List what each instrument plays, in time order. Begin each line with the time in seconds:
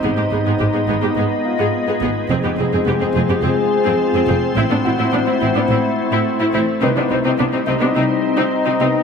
Already playing: synth drone D#4, french horn section D#4, grand piano B5
0.03 double bass section G#1, cello section G#2, synth drone G#3 B3 D#5, viola section B3 G#4, french horn section B3
0.17 cello section G#2, viola section G#3 G4
0.32 double bass section G#1, cello section G#2, viola section B3 G#4
0.46 cello section G#2, viola section B3 G#4
0.60 double bass section G#1, cello section G#2, viola section G#3 G4
0.74 cello section G#2, viola section B3 G#4
0.88 double bass section G#1, cello section G#2, viola section B3 G#4
1.02 cello section G#2, viola section G#3 G4
1.16 double bass section G#1, cello section G#2, viola section B3 G#4
1.45 grand piano F4 F5
1.59 cello section G#2, viola section B3 G#4
1.87 cello section G#2, viola section B3 G#4
2.01 double bass section G#1, cello section G#2, viola section B3 G#4
2.29 double bass section F1, cello section F2, french horn section C4 G#4, viola section C4 G#4, synth drone C4 F4 C5
2.44 cello section F2, viola section B3 G4
2.58 double bass section F1, cello section F2, viola section C4 G#4
2.73 cello section F2, viola section C4 G#4
2.86 double bass section F1, cello section F2, viola section B3 G4
3.01 cello section F2, viola section C4 G#4
3.14 double bass section F1, cello section F2, viola section C4 G#4
3.29 cello section F2, viola section B3 G4
3.43 double bass section F1, cello section F2, viola section C4 G#4
3.85 cello section F2, viola section C4 G#4
4.14 cello section F2, viola section C4 G#4
4.28 double bass section F1, cello section F2, viola section C4 G#4
4.55 double bass section A1, cello section A2, synth drone A3 E4, viola section C4 E4, french horn section E4
4.70 cello section A2, viola section B3 D4
4.84 double bass section A1, cello section A2, viola section C4 E4, grand piano F#4 F#5
4.98 cello section A2, viola section C4 E4
5.12 double bass section A1, cello section A2, viola section B3 D4
5.26 cello section A2, viola section C4 E4
5.40 double bass section A1, cello section A2, viola section C4 E4
5.54 cello section A2, viola section B3 D4
5.69 double bass section A1, cello section A2, viola section C4 E4
6.11 cello section A2, viola section C4 E4
6.40 cello section A2, viola section C4 E4
6.53 double bass section A1, cello section A2, viola section C4 E4
6.82 double bass section C2, cello section C3, synth drone G3 C4 D#4 D#5, viola section C4 D#4, french horn section C4 D#4, grand piano B4
6.96 cello section C3, viola section B3 D4
7.10 double bass section C2, cello section C3, viola section C4 D#4
7.24 cello section C3, viola section C4 D#4
7.39 double bass section C2, cello section C3, viola section B3 D4
7.52 cello section C3, viola section C4 D#4
7.67 double bass section C2, cello section C3, viola section C4 D#4, grand piano D#5
7.80 cello section C3, viola section B3 D4
7.95 double bass section C2, cello section C3, viola section C4 D#4
8.37 cello section C3, viola section C4 D#4
8.66 cello section C3, viola section C4 D#4
8.80 double bass section C2, cello section C3, grand piano B3 B4, viola section C4 D#4